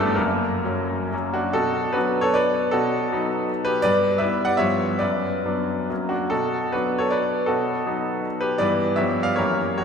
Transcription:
grand piano
Already playing: G1 G2 B3 D4 D5
0.00 A3 A4
0.15 F#1 F#2 A#3 A#4
0.65 F#3 A#3 C#4
1.12 F#3 A#3 C#4
1.34 D4 F#4
1.53 B2 F#4 A4
1.93 F#3 B3 D4 F#4 B4
2.21 A4 C#5
2.34 B4 D5
2.71 B2 F#4 A4
3.12 F#3 B3 D#4
3.65 G4 B4
3.82 G2 B4 D5
4.18 G3 B3 E4 B4 E5
4.45 D5 F#5
4.57 G2 F3 B3 F4 C#5 E5
4.99 F#2 B4 D5
5.45 F#3 B3 D4
5.90 F#2 F#3 A#3 C#4
6.09 D4 F#4
6.30 B2 F#4 A4
6.72 F#3 B3 D4 F#4 B4
6.98 A4 C#5
7.10 B4 D5
7.46 B2 F#4 A4
7.86 F#3 B3 D#4
8.41 G4 B4
8.58 G2 E3 B3 E4 B4 D5
8.96 G2 F3 B3 G4 C#5 E5
9.23 D5 F5
9.36 F#2 E3 A#3 G4 A#4 C#5
9.78 B1 F#4 C#5

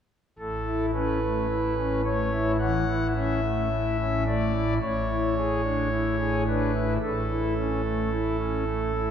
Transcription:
pipe organ
0.39 A1 A2 A4
0.66 E4
0.94 C#4 B4
1.22 A3
1.49 E4
1.77 C#4
2.05 A3 C#5
2.32 E4
2.59 E3 F#5
2.89 E4
3.15 C#4 E5
3.43 A3
3.72 E4
4.00 C#4
4.27 A3 D5
4.55 E4
4.81 A1 A2 C#5
5.09 E4
5.37 G#4
5.63 D4
5.91 E4
6.19 G#4
6.47 D4 B4
6.74 E4
7.03 A1 A2 A4
7.29 E4
7.56 C#4
7.84 A3
8.11 E4
8.39 C#4
8.66 A3
8.95 E4

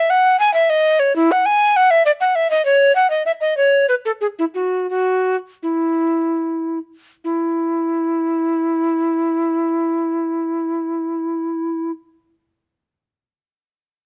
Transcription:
recorder
Already playing: E5
0.10 F#5
0.40 G#5
0.54 E5
0.70 D#5
1.00 C#5
1.16 E4
1.32 F#5
1.46 G#5
1.76 F#5
1.91 E5
2.06 D5
2.21 F#5
2.35 E5
2.51 D#5
2.65 C#5
2.95 F#5
3.10 D#5
3.26 E5
3.41 D#5
3.57 C#5
3.89 B4
4.05 A4
4.21 G#4
4.39 E4
4.54 F#4
4.90 F#4
5.63 E4
7.24 E4

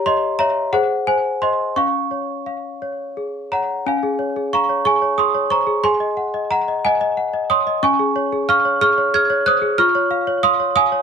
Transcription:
celesta
Already playing: G4 C#5 A#5
0.06 C#5 D#5 C6
0.39 C#5 E5 A#5
0.73 G#4 C5 F#5
1.07 C5 G#5
1.42 C5 D#5 C6
1.76 C#4 F5 C#6
2.11 C#5
2.46 F5
2.82 C#5
3.17 G#4
3.52 C#5 F#5 A#5
3.86 C#4 F5 G#5
4.03 G#4
4.19 C#5
4.36 G#4
4.53 F5 A#5 C#6
4.69 C#5
4.85 G#4 G#5 C#6
5.02 C#5
5.18 G#4 C6 D#6
5.35 C#5
5.50 C5 A#5 C#6
5.67 G#4
5.84 G#4 G#5 C6
6.00 D#5
6.17 F#5
6.34 D#5
6.51 F#5 A#5
6.68 D#5
6.85 D#5 F#5 G#5
7.01 D#5
7.17 F#5
7.34 D#5
7.50 C#5 C6 D#6
7.67 D#5
7.83 C#4 G#5 C#6
7.99 G#4
8.16 C#5
8.32 G#4
8.49 F5 C#6 F6
8.65 C#5
8.81 G#4 C#6 F6
8.98 C#5
9.14 G#4 F6 G#6
9.30 C#5
9.46 C5 D#6 F#6
9.62 G#4
9.78 F4 C#6 F6
9.95 C#5
10.11 F5
10.27 C#5
10.43 F5 C6 D#6
10.60 C#5
10.76 F5 G#5 D#6
10.92 C#5

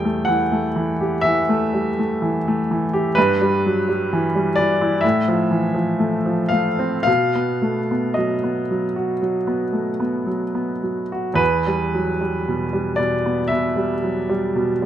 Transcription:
grand piano
Already playing: E2 G3 A3 G5
0.05 A3
0.25 E3 F#5
0.52 A3
0.76 E3
1.01 G4
1.21 E3 E5
1.49 A3
1.74 G3
1.99 A3
2.22 E3
2.48 A3
2.71 E3
2.93 G4
3.15 G2 B4
3.42 G3
3.66 F#3
3.89 G3
4.13 E3
4.36 G3
4.56 E3 D5
4.81 E4
5.01 A2 E5
5.28 F3
5.51 E3
5.75 F3
5.99 A3
6.26 F3
6.49 A3 F5
6.79 C4
7.03 B2 F5
7.35 B3
7.62 A3
7.91 B3
8.14 F#3 D#5
8.44 B3
8.71 F#3
8.96 F#4
9.22 F#3
9.47 B3
9.73 A3
10.00 B3
10.26 F#3
10.55 B3
10.83 F#3
11.12 F#4
11.34 E2 B4
11.67 G3
11.94 F#3
12.21 G3
12.48 B2
12.73 G3
12.96 B2 D5
13.26 B3
13.48 B2 E5
13.76 G3
14.03 F#3
14.29 G3
14.56 B2
14.82 G3

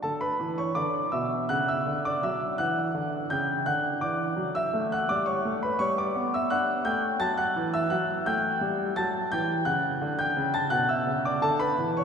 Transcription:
grand piano
0.03 D3 A4 A5
0.21 B4 B5
0.40 E3
0.58 C#5 C#6
0.75 D3 D5 D6
1.12 B2 E5 E6
1.49 C#3 F#5 F#6
1.68 E5 E6
1.86 D3
2.05 D5 D6
2.23 F#3 E5 E6
2.58 E3 F#5 F#6
2.95 D3
3.30 C#3 G5 G6
3.66 D3 F#5 F#6
4.01 E3 D5 D6
4.36 F#3
4.55 E5 E6
4.73 A3
4.92 F#5 F#6
5.09 G3 D5 D6
5.26 C#5 C#6
5.45 A3
5.63 B4 B5
5.79 G3 C#5 C#6
5.98 D5 D6
6.15 B3
6.34 E5 E6
6.50 D4 F#5 F#6
6.85 A3 G5 G6
7.20 F#3 A5 A6
7.38 F#5 F#6
7.56 E3
7.74 E5 E6
7.90 F#3 F#5 F#6
8.26 A3 G5 G6
8.61 G3
8.96 F#3 A5 A6
9.32 E3 G5 G6
9.65 C#3 F#5 F#6
10.02 D3
10.19 G5 G6
10.37 C#3
10.54 A5 A6
10.70 B2 F#5 F#6
10.89 E5 E6
11.07 C#3
11.25 D5 D6
11.42 D3 A4 A5
11.60 B4 B5
11.78 E3
11.97 C#5 C#6

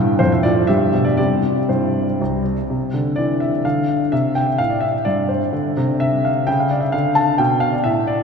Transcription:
grand piano
Already playing: G2 A2
0.19 F2 C5
0.32 E5
0.43 A2 F4 D5
0.67 G2 G4 E5
0.93 B2
1.05 D5
1.17 C3 G3 C4 G4 D5
1.69 G2 E4 C5
2.21 C2
2.70 C3
2.94 D3
3.16 E3 D5
3.40 E5
3.65 D3 F5
4.12 C3 E5
4.35 G5
4.47 E5
4.58 A2 F5
4.70 D5
4.81 E5
5.05 G2 D5
5.29 C5
5.53 D3
5.77 C3
6.00 E5
6.25 F5
6.47 C#3 G5
6.60 F5
6.71 D5
6.81 E5
6.92 D3 F5
7.15 A5
7.38 B2 G5
7.60 F5
7.72 D5
7.84 A2 E5
8.07 D5

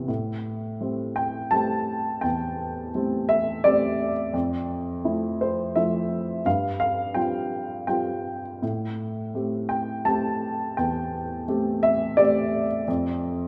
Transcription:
upright piano
Already playing: C3 E3 B3
0.08 A2
0.80 G3 A3 C4
1.16 G5
1.51 G3 A3 C4 A5
2.21 E2 G5
2.95 G3 A3 C4
3.29 E5
3.64 G3 A3 C4 D5
4.34 F2
5.04 F3 A3 E4
5.41 C5
5.76 F3 A3 E4 E5
6.46 G2 F5
6.80 F5
7.14 G3 C4 F4 G5
7.87 G3 C4 F4 G5
8.62 A2
9.35 A3 C4 G4
9.69 G5
10.05 A3 C4 G4 A5
10.77 E2 G5
11.48 A3 C4 G4
11.83 E5
12.17 A3 C4 G4 D5
12.88 F2

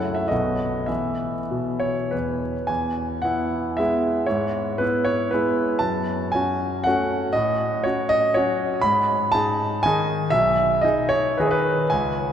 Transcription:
grand piano
Already playing: F#2 A3 C#4 E4 F#5
0.15 E5
0.28 B1 A3 B3 F#4 D#5
0.86 E3 B3 E4 E5
1.51 B2
1.80 C#5
2.11 E2 B4
2.67 E2 G#5
3.22 B3 E4 F#5
3.77 G#3 B3 E4 E5
4.26 G#2 C#5
4.78 B3 E4 B4
5.05 C#5
5.31 G#3 B3 E4 B4
5.79 F#2 A5
6.32 C#4 F#4 G#5
6.84 A3 C#4 F#4 F#5
7.33 A2 D#5
7.84 C#4 F#4 C#5
8.09 D#5
8.34 F#3 C#4 F#4 C#5
8.81 G#2 B5
9.32 D#4 G#4 A5
9.83 D#3 D#4 G#4 G#5
10.30 B1 E5
10.81 D#4 G#4 D#5
11.09 C#5
11.37 D#3 D#4 G#4 B4
11.47 C#5
11.51 B4
11.90 C#2 G#5

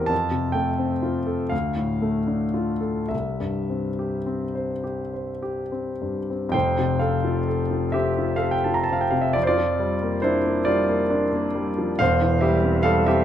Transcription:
grand piano
Already playing: E2 E3 A#3 C4 G4 A#4 G5
0.06 F2 A5
0.31 C3
0.52 A3 G5
0.79 C4
1.03 F4
1.27 A4
1.49 D2 F5
1.77 A2
2.02 A3
2.27 D4
2.54 F4
2.81 A4
3.09 C2 E5
3.40 G2
3.70 C4
3.99 G4
4.26 C4
4.55 C5
4.84 G4
5.14 C5
5.43 G4
5.72 C4
6.02 G2
6.30 C4
6.49 F2 G5
6.54 F1 C5
6.79 C3
7.00 C4 A4 F5
7.24 F4
7.48 A4
7.71 F4
7.92 C4 G4 E5
8.19 F4
8.36 A4 F5
8.42 A4
8.51 G5
8.64 F4 A5
8.74 A#5
8.84 A5
8.91 C4 F5
9.01 G5
9.10 C3 F5
9.21 E5
9.33 F2 D5
9.43 C5
9.47 F4 D5
9.58 F3
9.79 G3
10.03 A#3
10.22 D4 E4 C5
10.46 A#3
10.65 G3 F4 D5
10.89 A#3
11.10 D4
11.33 A#3
11.55 G3
11.78 F3
11.99 E1 E2 C5 F5
12.21 E3
12.41 G3 G4 E5
12.64 C4
12.83 G3 A4 F5
13.06 C4 G4 E5

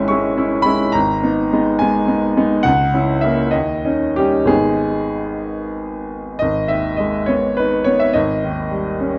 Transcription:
grand piano
Already playing: G#1 G#3 C#4 E4 G#5
0.08 G#3 C#4 E4 C#6
0.37 C#4 E4
0.62 G#3 C#4 E4 B5
0.92 G#1 A#5
1.23 B3 D#4
1.53 G#3 B3 D#4
1.79 G#3 B3 D#4 G#5
2.08 B3 D#4
2.37 G#3 B3 D#4
2.63 C#2 F#5
2.94 C#4 E4
3.21 A#3 C#4 E4 E5
3.51 D#2 D#5
3.85 C#4 D#4
4.16 G3 C#4 D#4 G4
4.45 G#1 G#3 B3 D#4 G#4
6.39 G#1 D#5
6.68 D#2 E5
6.97 G#3 D#5
7.26 B3 C#5
7.57 D#4 B4
7.84 B3 C#5
8.00 E5
8.13 G#1 D#5
8.44 D#2
8.71 G3
9.00 C#4

